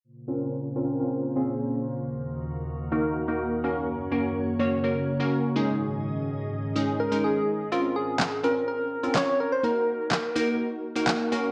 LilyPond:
<<
  \new Staff \with { instrumentName = "Soft synth lead" } { \time 4/4 \key bes \minor \tempo 4 = 125 r1 | r1 | r1 | r2 r8 bes'8 aes'4 |
f'8 aes'4 bes'8 bes'4 des''8 bes'16 c''16 | bes'2. r4 | }
  \new Staff \with { instrumentName = "Synth pluck" } { \time 4/4 \key bes \minor r8 <c' des' f' bes'>8. r16 <c' des' f' bes'>8 <c' des' f' bes'>8 r16 <c' des' f' aes'>4~ <c' des' f' aes'>16 | r2 <bes ees' ges' bes'>8 r16 <bes ees' ges' bes'>8. <bes des' ges' bes'>8~ | <bes des' ges' bes'>16 r16 <bes des' ges' bes'>8. r16 <bes des' ges' des''>8 <bes des' ges' bes'>8 r16 <bes des' ges' bes'>8. <aes des' ees' aes'>8~ | <aes des' ees' aes'>4 r4 <aes des' ees' aes'>8 r16 <aes des' ees' bes'>4~ <aes des' ees' bes'>16 |
<c' des' f' bes'>4~ <c' des' f' bes'>16 r16 <c' des' f' bes'>4 r16 <c' des' f' bes'>4 r16 | <bes ees' ges' bes'>4~ <bes ees' ges' bes'>16 r16 <bes ees' ges' bes'>4 r16 <bes ees' ges' bes'>8. <bes des' ges' bes'>8 | }
  \new Staff \with { instrumentName = "Ambient pad" } { \time 4/4 \key bes \minor << { <bes, des bes c''>1 | <ees, ees bes'>2.~ <ees, ees bes'>8 <ges, des des''>8~ | <ges, des des''>2.~ <ges, des des''>8 <aes, ees des' ees''>8~ | <aes, ees des' ees''>1 |
r1 | r1 | } \\ { f'1 | ges'1~ | ges'2.~ ges'8 aes'8~ | aes'1 |
r1 | r1 | } >> }
  \new DrumStaff \with { instrumentName = "Drums" } \drummode { \time 4/4 r4 r4 r4 r4 | r4 r4 r4 r4 | r4 r4 r4 r4 | r4 r4 r4 r4 |
r4 <hc sn>4 r4 <hc sn>4 | r4 <hc sn>4 r4 <hc sn>4 | }
>>